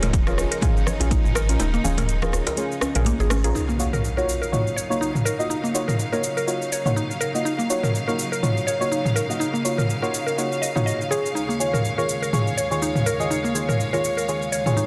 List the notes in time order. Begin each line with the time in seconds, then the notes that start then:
Already playing: D#1 C#3 F3 G#3 D#4
0.03 A#4, closed hi-hat, mid tom, djembe slap, high conga, shaker
0.13 kick, closed hi-hat, shaker
0.27 C#4 F4 G#4 A#4, cross-stick, low conga, shaker
0.38 cross-stick, djembe tone, shaker
0.51 A#4, closed hi-hat, shaker
0.61 C#4 F4 G#4, kick, closed hi-hat, mid tom, high conga, djembe tone, low conga, shaker
0.77 shaker
0.87 C#5, cross-stick, low conga, shaker
1.00 A#1 C#4 F4 G#4, closed hi-hat, djembe tone, shaker
1.11 D#4, kick, closed hi-hat, high conga, shaker
1.24 G#1, mid tom, shaker
1.35 A#4, cross-stick, shaker
1.49 A#1 C#4 F4 A#4, closed hi-hat, shaker
1.59 D#1 D#4, closed hi-hat, djembe slap, high conga, shaker
1.74 A#3, shaker
1.84 D#1 C#4 F4 G#4, djembe tone, low conga, shaker
1.97 A#4, closed hi-hat, mid tom, djembe slap, high conga, shaker
2.09 closed hi-hat, shaker
2.22 C#4 F4 G#4 A#4, cross-stick, low conga, shaker
2.32 cross-stick, djembe tone, shaker
2.47 A#4, closed hi-hat, djembe slap, shaker
2.57 C#4 F4 G#4, closed hi-hat, high conga, shaker
2.72 shaker
2.81 C#4, cross-stick, djembe slap, shaker
2.95 A#1 C#4 F4 G#4 A#4, closed hi-hat, mid tom, shaker
3.05 A#3, closed hi-hat, high conga, shaker
3.19 G#1 G#4, djembe tone, shaker
3.30 C#4, cross-stick, high conga, shaker
3.44 A#1 C#4 F4 G#4 A#4, closed hi-hat, shaker
3.54 C#3 F#3 D#4 F5, impact, shaker
3.69 A#3, shaker
3.79 A#3 D#4 F4 F#4 C#5, shaker
3.93 A#4, mid tom, shaker
4.05 shaker
4.17 A#3 D#4 F4 F#4 A#4 C#5, shaker
4.29 shaker
4.42 A#4, shaker
4.52 A#3 D#4 F4 F#4 C#5, mid tom, shaker
4.67 shaker
4.76 C#5, shaker
4.90 A#3 D#4 F4 F#4 C#5, shaker
5.01 D#4, shaker
5.15 mid tom, shaker
5.25 A#4, shaker
5.39 A#3 D#4 F4 F#4 D#5, shaker
5.50 D#4, shaker
5.64 A#3, shaker
5.74 A#3 D#4 F4 F#4 C#5, shaker
5.88 A#4, mid tom, shaker
5.99 shaker
6.12 A#3 D#4 F4 F#4 A#4 C#5, shaker
6.24 shaker
6.37 A#4, shaker
6.47 A#3 D#4 F4 F#4 C#5, shaker
6.62 shaker
6.72 C#5, shaker
6.86 A#3 D#4 F4 F#4 C#5, mid tom, shaker
6.96 D#4, shaker
7.11 shaker
7.21 A#4, shaker
7.34 A#3 D#4 F4 F#4 D#5, shaker
7.45 D#4, shaker
7.59 A#3, shaker
7.70 A#3 D#4 F4 F#4 C#5, shaker
7.83 A#4, mid tom, shaker
7.95 shaker
8.08 A#3 D#4 F4 F#4 A#4 C#5, shaker
8.19 shaker
8.32 A#4, shaker
8.43 A#3 D#4 F4 F#4 C#5, mid tom, shaker
8.57 shaker
8.67 C#5, shaker
8.80 A#3 D#4 F4 F#4 C#5, shaker
8.92 D#4, shaker
9.05 mid tom, shaker
9.16 A#4, shaker
9.29 A#3 D#4 F4 F#4 D#5, shaker
9.40 D#4, shaker
9.54 A#3, shaker
9.64 A#3 D#4 F4 F#4 C#5, shaker
9.78 A#4, mid tom, shaker
9.90 shaker
10.02 A#3 D#4 F4 F#4 A#4 C#5, shaker
10.14 shaker
10.26 A#4, shaker
10.38 A#3 D#4 F4 F#4 C#5, shaker
10.52 shaker
10.62 D#5, shaker
10.76 A#3 D#4 F4 F#4 C#5, mid tom, shaker
10.86 D#5, shaker
11.01 shaker
11.10 D#3 F4 G#4 C#5, shaker
11.26 shaker
11.35 D#2 G#3 D#4 C#5, shaker
11.49 A#3, shaker
11.59 D#3 F4 G#4 C#5, shaker
11.73 A#4, mid tom, shaker
11.85 shaker
11.98 D#3 F4 G#4 A#4 C#5, shaker
12.09 shaker
12.22 A#4, shaker
12.33 D#3 F4 G#4 C#5, mid tom, shaker
12.47 shaker
12.57 C#5, shaker
12.71 D#3 F4 G#4 C#5, shaker
12.82 D#4, shaker
12.95 mid tom, shaker
13.06 A#4, shaker
13.20 D#3 F4 G#4 D#5, shaker
13.30 D#4, shaker
13.44 A#3, shaker
13.55 D#3 F4 G#4 C#5, shaker
13.69 A#4, mid tom, shaker
13.80 shaker
13.93 D#3 F4 G#4 A#4 C#5, shaker
14.04 shaker
14.17 A#4, shaker
14.28 D#3 F4 G#4 C#5, shaker
14.42 shaker
14.52 C#5, shaker
14.66 D#3 F4 G#4 C#5, mid tom, shaker
14.77 D#4, shaker